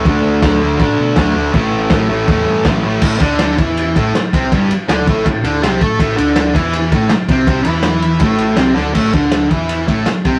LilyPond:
<<
  \new Staff \with { instrumentName = "Distorted electric guitar" } { \time 4/4 \key d \major \tempo 4 = 162 <d a d'>4 <d a d'>8 <a d'>8 <d a d'>4 <d a d'>8 <a d'>8 | <a, e a>4 <a, e a>8 <e a>8 <a, e a>4 <a, e a>8 <e a>8 | <a, a>8 <d d'>4 <e e'>4 <a, a>8 r8 <c c'>8 | <g, g>8 r8 <d d'>8 <a, a>8 a,8 <d d'>8 <c c'>8 <a a'>8 |
<a, a>8 <d d'>4 <e e'>4 <a, a>8 r8 <c c'>8 | <c c'>8 <e e'>4. <a, a>4 <c c'>8 <d d'>8 | <a, a>8 <d d'>4 <e e'>4 <a, a>8 r8 <c c'>8 | }
  \new Staff \with { instrumentName = "Picked electric bass" } { \clef bass \time 4/4 \key d \major d,8 d,8 d,8 d,8 a,8 b,8 d,8 d,8 | a,,8 a,,8 a,,8 a,,8 e,8 g,8 a,,8 a,,8 | a,,8 d,4 e,4 a,,8 r8 c,8 | g,,8 r8 d,8 a,,8 a,,8 d,8 c,8 a,8 |
a,,8 d,4 e,4 a,,8 r8 c,8 | c,8 e,4. a,,4 c,8 d,8 | r8 d,4 e,4 a,,8 r8 c,8 | }
  \new DrumStaff \with { instrumentName = "Drums" } \drummode { \time 4/4 <cymc bd>4 <cymc bd sn>4 <cymc bd>4 <cymc bd sn>4 | <cymc bd>4 <cymc bd sn>4 <cymc bd>4 <cymc bd sn>4 | <cymc bd>8 <bd cymr>8 <cymr sn>8 <bd cymr>8 cymr8 <bd cymr>8 <cymr sn>8 <bd cymr>8 | <bd cymr>8 cymr8 <cymr sn>8 <bd cymr>8 <bd cymr>8 cymr8 <cymr sn>8 <bd cymr>8 |
<bd cymr>8 cymr8 <cymr sn>8 <bd cymr>8 cymr8 <bd cymr>8 <cymr sn>8 <bd cymr>8 | <bd cymr>8 cymr8 <cymr sn>8 cymr8 <bd cymr>8 cymr8 <cymr sn>8 sn8 | <cymc bd>8 <bd cymr>8 <cymr sn>8 <bd cymr>8 cymr8 <bd cymr>8 <cymr sn>8 <bd cymr>8 | }
>>